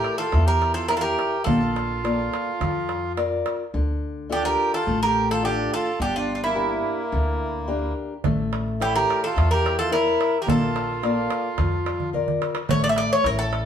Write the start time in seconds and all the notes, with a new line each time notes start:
Already playing: E4 G4 A4 A#4 C#5
0.04 darbuka tek
0.18 F4 A4, darbuka tek
0.32 E2 E3, darbuka tek
0.45 G4 A#4
0.62 darbuka tek
0.74 F4 A4
0.88 E4 A#4 C#5, darbuka tek
0.96 F4 A4
1.01 G4 A#4
1.19 darbuka tek
1.44 A#1 A#3 F4 A4, darbuka dum
1.62 darbuka tek
1.76 darbuka tek
2.04 A#3 F4 D5, darbuka tek
2.19 darbuka tek
2.33 darbuka tek
2.47 darbuka tek
2.61 F2 F3, darbuka tek, darbuka dum
2.75 darbuka tek
2.89 darbuka tek
3.04 darbuka tek
3.17 F4 A#4 D5, darbuka tek
3.32 darbuka tek
3.46 darbuka tek
3.74 D2 D3
4.30 D4 F4 G4 A4
4.45 G4 A#4
4.74 F4 A4
4.87 A1 A3
5.03 G4 A#4
5.31 F4 A4
5.43 D4 F4 G4 A4
5.47 D4
5.74 F4 A4
6.00 G1 G3 D4 G4
6.16 D4 F4
6.35 D4 F4
6.43 A#3 E4
6.55 D4 G4 A#4
7.12 D2 D3
7.68 D4 G4 A#4
8.24 A1 A3, darbuka dum
8.53 darbuka tek
8.68 darbuka tek
8.80 E4 G4 A4 C#5, darbuka tek
8.96 G4 A#4, darbuka tek
9.10 darbuka tek
9.24 F4 A4, darbuka tek
9.36 E2 E3, darbuka tek
9.51 G4 A#4
9.66 darbuka tek
9.79 F4 A4, darbuka tek
9.91 E4 A#4 C#5, darbuka tek
10.07 darbuka tek
10.21 darbuka tek
10.41 G4 A#4
10.46 A#1 A#3 F4 A4, darbuka dum
10.62 darbuka tek
10.76 darbuka tek
10.90 darbuka tek
11.03 A#3 F4 D5, darbuka tek
11.30 darbuka tek
11.58 F2 F3, darbuka tek, darbuka dum
11.72 darbuka tek
11.86 darbuka tek
12.00 darbuka dum
12.13 F4 A#4 D5, darbuka dum
12.28 darbuka dum
12.42 darbuka tek
12.55 darbuka tek
12.69 A1 A3 C#5, darbuka dum
12.84 D5
12.89 E5
12.96 D5, darbuka tek
13.13 C#5
13.24 A1 E4 A4 A#4 C#5, darbuka tek
13.39 A4
13.53 darbuka tek